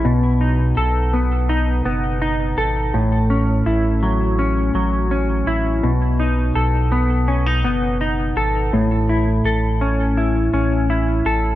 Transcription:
X:1
M:4/4
L:1/16
Q:1/4=83
K:Bmix
V:1 name="Clean electric guitar"
B,,2 D2 A2 B,2 D2 B,2 D2 A2 | A,,2 C2 E2 F,2 C2 F,2 C2 E2 | B,,2 D2 A2 B,2 C D B,2 D2 A2 | A,,2 E2 A2 C2 E2 C2 E2 A2 |]
V:2 name="Sub bass" clef=bass
B,,,4 B,,,6 F,,,4 G,,,2 | A,,,4 A,,,6 A,,,4 A,,,2 | B,,,4 B,,,6 F,,,4 G,,,2 | A,,,4 A,,,6 A,,,4 A,,,2 |]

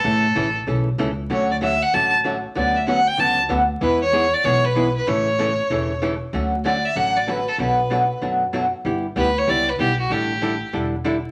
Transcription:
X:1
M:4/4
L:1/8
Q:"Swing" 1/4=191
K:D
V:1 name="Fiddle"
A3 z4 z | c d e f a z3 | d e f g a z3 | B c2 d c B2 B |
c6 z2 | z2 d e f d B A | B4 z4 | z2 B c d B G F |
G4 z4 |]
V:2 name="Hollow-body jazz guitar"
[C,E,A,CA] z [C,E,A,CA] z [C,E,A,CA] z [C,E,A,CA] z | [D,F,A,CF] z [D,F,A,CF] z [D,F,A,CF] z [D,F,A,CF] z | [D,F,B,CF] z [D,F,B,CF] z [D,F,B,CF] z [D,F,B,CF] z | [E,^G,B,E^G] z [E,G,B,EG] z [E,G,B,EG] z [E,G,B,EG] z |
[C,E,A,CA] z [C,E,A,CA] z [C,E,A,CA] z [C,E,A,CA] z | [D,F,A,CF] z [D,F,A,CF] z [D,F,A,CF] z [D,F,A,CF] z | [B,,F,A,DF] z [B,,F,A,DF] z [B,,F,A,DF] z [B,,F,A,DF] z | [G,B,EG] z [G,B,EG] z [G,B,EG] z [G,B,EG] z |
[D,G,DEA] z [D,G,DEA] z [D,G,DEA] z [D,G,DEA] z |]
V:3 name="Upright bass" clef=bass
A,,2 A,,,2 B,,,2 C,,2 | D,,4 A,,,4 | D,,4 C,,2 D,,2 | E,,4 B,,,4 |
A,,,4 E,,,4 | D,,4 A,,,4 | B,,,4 F,,4 | G,,,2 D,,2 C,,2 B,,,2 |
A,,,4 E,,,4 |]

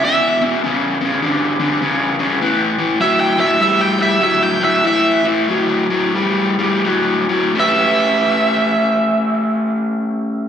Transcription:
X:1
M:4/4
L:1/8
Q:"Swing" 1/4=95
K:Amix
V:1 name="Lead electric guitar"
e z6 z | z2 (3e g e (3e g e (3e g e | e z6 z | e8 |]
V:2 name="Overdriven electric guitar" clef=bass
[E,,B,,] [E,,B,,] [E,,C,] [E,,C,] [E,,D,] [E,,D,] [E,,C,] [E,,C,] | [A,,E,] [A,,E,] [A,,F,] [A,,F,] [A,,G,] [A,,G,] [A,,F,] [A,,F,] | [A,,E,] [A,,E,] [A,,F,] [A,,F,] [A,,G,] [A,,G,] [A,,F,] [A,,F,] | [A,CGB]8 |]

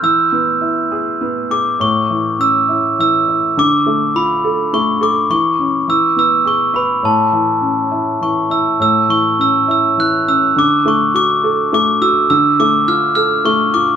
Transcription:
X:1
M:3/4
L:1/8
Q:1/4=103
K:A
V:1 name="Glockenspiel"
e'2 z3 d' | c'2 e'2 e'2 | d'2 b2 c' d' | c'2 e' e' c' b |
a4 c' e' | e' c' e' e' f' e' | d' c' d'2 d' e' | e' d' =f' f' c' d' |]
V:2 name="Felt piano"
E, B, E G B, G | A,, E, C E E, E | D, A, =F A A, A | E, C E, B, G B |
A,, E, C E E, E | A,, E, C E E, C | D, A, F A A, F | D, A, =F A A, F |]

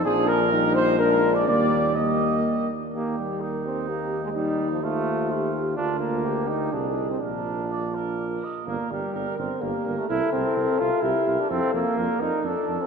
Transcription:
X:1
M:3/4
L:1/16
Q:1/4=126
K:Eb
V:1 name="Cornet"
A2 B4 c2 B3 d | d4 e6 z2 | B8 e4- | e4 c4 c4 |
B8 e4 | d8- d2 z2 | [K:Bb] d2 d2 d2 d2 d2 d2 | =e2 e2 e2 e2 e2 e2 |
f2 f2 d2 d2 e2 e2 |]
V:2 name="Trumpet"
A2 B4 c2 B3 d | d4 e6 z2 | G4 E8 | E4 F4 F4 |
F4 G4 A4 | B4 d2 B4 e2 | [K:Bb] B2 B2 B2 B2 B2 B2 | B2 B2 B2 B2 B2 B2 |
A2 A2 B2 B2 A2 A2 |]
V:3 name="French horn"
D4 E4 D4 | B,4 B,6 z2 | G4 B4 G4 | E4 F4 G4 |
F4 G4 A4 | F8- F2 z2 | [K:Bb] z4 B4 G4 | A8 G4 |
A4 B4 A4 |]
V:4 name="Trombone"
F,4 G,4 A,4 | G,4 G,6 z2 | B,2 G,4 C2 B,3 A, | G,3 F, =A,6 z2 |
D2 B,4 E2 D3 C | D8 z4 | [K:Bb] B,2 G,4 C2 B,3 A, | =E2 C4 F2 E3 D |
C2 B,4 E2 D3 C |]
V:5 name="Tuba" clef=bass
B,,,12 | E,,8- E,,2 z2 | E,,12- | E,,12 |
D,,8 C,,4 | B,,,8- B,,,2 z2 | [K:Bb] G,,,2 G,,,2 G,,,2 G,,,2 G,,,2 G,,,2 | C,,2 C,,2 C,,2 C,,2 C,,2 C,,2 |
F,,2 F,,2 F,,2 F,,2 F,,2 F,,2 |]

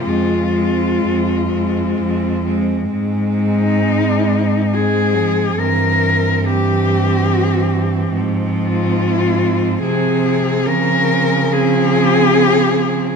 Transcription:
X:1
M:3/4
L:1/8
Q:1/4=70
K:Fm
V:1 name="Cello"
F4- F z | z E3 A2 | B2 G4 | z F3 A2 |
B2 A4 |]
V:2 name="Cello"
C C2 C2 C | C4 C2 | C2 C4 | C4 C2 |
C2 C4 |]
V:3 name="Cello" clef=bass
A, A,2 A,2 A, | A,4 A, F, | =E,2 E,4 | F,4 F,2 |
F,2 F,4 |]
V:4 name="Cello" clef=bass
F,,2 F,,2 F,,2 | A,,6 | G,,6 | A,,4 C,2 |
D,6 |]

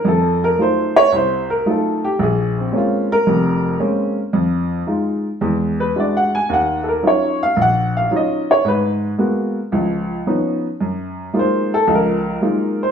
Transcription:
X:1
M:4/4
L:1/8
Q:"Swing" 1/4=112
K:Fphr
V:1 name="Upright piano"
=A B c d c B A =G | A C F B3 z2 | z4 z =B (3=d ^f ^g | g [=AB] d f g f e d |
_c z6 z | z2 c =A B3 c |]
V:2 name="Upright piano"
F,,2 [G,=A,EF] z C,,2 [G,A,EF] z | B,,,2 [A,B,CD] z [F,,,F,,]2 [A,B,CD] z | F,,2 [A,EF] z [=E,,^G,]2 [G,=D=E^F] z | E,,2 [G,DEF] z B,,,2 [G,DEF] z |
A,,2 [A,B,_CG] z [D,,F,]2 [F,CDE] z | G,,2 [G,A,B,EF] z [D,,F,]2 [G,A,B,EF] z |]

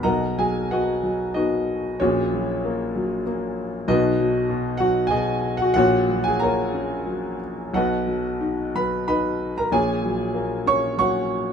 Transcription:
X:1
M:3/4
L:1/16
Q:1/4=93
K:B
V:1 name="Grand piano"
[Adfa]2 [Gg]2 [Fdf]4 [DFd]4 | [CFGc]8 z4 | [DFBd]6 [Ff]2 [Gdg]3 [Ff] | [Fcf]3 [Gg] [Aca]6 z2 |
[FBdf]6 [Bb]2 [Bdb]3 [Aa] | [Gcg]6 [cc']2 [cfc']4 |]
V:2 name="Grand piano" clef=bass
[B,,,B,,]2 F,2 B,2 F,2 B,4 | [A,,,A,,]2 F,2 A,2 F,2 A,4 | [B,,,B,,]2 F,2 B,,2 F,2 B,,4 | [A,,,A,,]2 F,2 A,2 C2 F,4 |
[B,,,B,,]2 F,2 D2 F,2 D4 | [A,,,A,,]2 F,2 A,2 C2 F,4 |]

